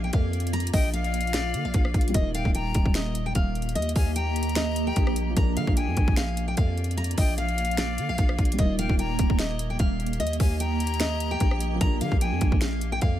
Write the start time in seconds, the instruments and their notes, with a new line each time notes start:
Already playing: 808-style bass A#1, grand piano F3 A#3 D4, ambient pad A#3 F4 D5
0.04 steel-string acoustic guitar G5
0.13 808-style bass F2, steel-string acoustic guitar F5, kick, closed hi-hat
0.33 closed hi-hat
0.40 closed hi-hat
0.47 closed hi-hat
0.53 steel-string acoustic guitar A#5, closed hi-hat
0.60 closed hi-hat
0.67 closed hi-hat
0.73 808-style bass A#1, steel-string acoustic guitar D#5, flute G5, kick, open hi-hat
0.93 flute F5, steel-string acoustic guitar F5, closed hi-hat
1.04 closed hi-hat
1.14 closed hi-hat
1.21 closed hi-hat
1.27 closed hi-hat
1.33 steel-string acoustic guitar D5, finger snap, snare, closed hi-hat
1.54 808-style bass D3, closed hi-hat
1.65 808-style bass A#1, steel-string acoustic guitar F5
1.74 808-style bass A#1, kick, closed hi-hat
1.85 cross-stick
1.94 808-style bass A#1, kick, closed hi-hat
2.01 closed hi-hat
2.08 grand piano G3, closed hi-hat
2.14 808-style bass D#1, ambient pad A#3 G4 D#5, grand piano A#3, steel-string acoustic guitar D#5, kick, closed hi-hat
2.21 grand piano D#4
2.35 steel-string acoustic guitar F5, flute G5, closed hi-hat
2.45 808-style bass D#1, kick
2.55 steel-string acoustic guitar G5, flute A#5, closed hi-hat
2.74 808-style bass D#1, kick, closed hi-hat
2.86 808-style bass D#1, kick
2.94 steel-string acoustic guitar D#5, finger snap, snare, closed hi-hat
3.15 closed hi-hat
3.26 steel-string acoustic guitar G5
3.35 808-style bass D#1, steel-string acoustic guitar F5, kick, closed hi-hat
3.55 closed hi-hat
3.62 closed hi-hat
3.69 closed hi-hat
3.75 808-style bass D#2, steel-string acoustic guitar D#5, closed hi-hat
3.82 closed hi-hat
3.89 closed hi-hat
3.96 808-style bass D#2, steel-string acoustic guitar F5, flute G#5, kick, open hi-hat
4.16 steel-string acoustic guitar G5, flute A#5, closed hi-hat
4.36 closed hi-hat
4.43 closed hi-hat
4.49 closed hi-hat
4.55 steel-string acoustic guitar D#5, finger snap, snare, closed hi-hat
4.76 closed hi-hat
4.87 steel-string acoustic guitar G5
4.96 808-style bass A#1, kick, closed hi-hat
5.07 cross-stick
5.16 closed hi-hat
5.30 grand piano F3
5.36 808-style bass A#1, grand piano A#3, ambient pad A#3 F4 D5, steel-string acoustic guitar A#5, kick, closed hi-hat
5.42 grand piano D4
5.57 808-style bass D3, steel-string acoustic guitar F5, flute F5, closed hi-hat
5.67 808-style bass A#1, kick
5.77 steel-string acoustic guitar G5, flute G#5, closed hi-hat
5.88 808-style bass F2
5.97 808-style bass A#1, kick, closed hi-hat
6.08 808-style bass A#1, kick
6.16 steel-string acoustic guitar F5, finger snap, snare, closed hi-hat
6.37 closed hi-hat
6.48 steel-string acoustic guitar G5
6.57 808-style bass F2, steel-string acoustic guitar F5, kick, closed hi-hat
6.78 closed hi-hat
6.84 closed hi-hat
6.91 closed hi-hat
6.97 steel-string acoustic guitar A#5, closed hi-hat
7.04 closed hi-hat
7.11 closed hi-hat
7.18 808-style bass A#1, steel-string acoustic guitar D#5, flute G5, kick, open hi-hat
7.38 flute F5, steel-string acoustic guitar F5, closed hi-hat
7.49 closed hi-hat
7.58 closed hi-hat
7.65 closed hi-hat
7.71 closed hi-hat
7.77 steel-string acoustic guitar D5, finger snap, snare, closed hi-hat
7.98 808-style bass D3, closed hi-hat
8.09 808-style bass A#1, steel-string acoustic guitar F5
8.18 808-style bass A#1, kick, closed hi-hat
8.29 cross-stick
8.38 808-style bass A#1, kick, closed hi-hat
8.45 closed hi-hat
8.52 grand piano G3, closed hi-hat
8.59 808-style bass D#1, grand piano A#3, ambient pad G4 D#5, steel-string acoustic guitar D#5, kick, closed hi-hat
8.65 grand piano D#4
8.79 steel-string acoustic guitar F5, flute G5, closed hi-hat
8.89 808-style bass D#1, kick
8.99 steel-string acoustic guitar G5, flute A#5, closed hi-hat
9.19 808-style bass D#1, kick, closed hi-hat
9.30 808-style bass D#1, kick
9.39 steel-string acoustic guitar D#5, finger snap, snare, closed hi-hat
9.59 closed hi-hat
9.70 steel-string acoustic guitar G5
9.79 808-style bass D#1, steel-string acoustic guitar F5, kick, closed hi-hat
10.00 closed hi-hat
10.06 closed hi-hat
10.13 closed hi-hat
10.20 808-style bass D#2, steel-string acoustic guitar D#5, closed hi-hat
10.27 closed hi-hat
10.33 closed hi-hat
10.40 808-style bass D#2, steel-string acoustic guitar F5, flute G#5, kick, open hi-hat
10.60 steel-string acoustic guitar G5, flute A#5, closed hi-hat
10.80 closed hi-hat
10.87 closed hi-hat
10.94 closed hi-hat
11.00 steel-string acoustic guitar D#5, finger snap, snare, closed hi-hat
11.20 closed hi-hat
11.31 steel-string acoustic guitar G5
11.40 808-style bass A#1, kick, closed hi-hat
11.51 cross-stick
11.60 closed hi-hat
11.75 grand piano F3
11.81 808-style bass A#1, grand piano A#3, ambient pad F4 D5, steel-string acoustic guitar A#5, kick, closed hi-hat
11.87 grand piano D4
12.01 808-style bass D3, steel-string acoustic guitar F5, flute F5, closed hi-hat
12.12 808-style bass A#1, kick
12.21 steel-string acoustic guitar G5, flute G#5, closed hi-hat
12.32 808-style bass F2
12.41 808-style bass A#1, kick, closed hi-hat
12.52 808-style bass A#1, kick
12.61 steel-string acoustic guitar F5, finger snap, snare, closed hi-hat
12.81 closed hi-hat
12.92 steel-string acoustic guitar G5
13.01 808-style bass F2, steel-string acoustic guitar F5, kick, closed hi-hat